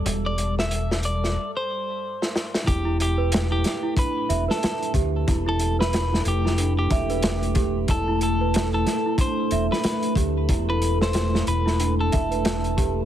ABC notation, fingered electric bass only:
X:1
M:4/4
L:1/8
Q:"Swing 16ths" 1/4=92
K:Em
V:1 name="Fingered electric bass" clef=bass
E,,,4 z4 | E,,,3 z2 E,,, z D,, | E,,,3 =F,,,2 E,,,3 | E,,,3 z2 E,,, z D,, |
E,,,3 E,,,2 E,,,3 |]